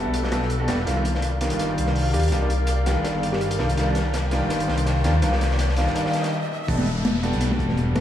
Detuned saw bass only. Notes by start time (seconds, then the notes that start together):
0.05 B1
0.14 B1
0.68 E1
0.86 C2
1.51 G1
1.77 C2
2.14 D#2
2.32 C2
2.96 G1
3.04 G1
3.59 C2
3.77 C2
4.41 G1
4.68 C2
5.05 D#2
5.23 C2
5.87 G1
6.69 E1
7.33 B1
7.59 E1
7.96 G1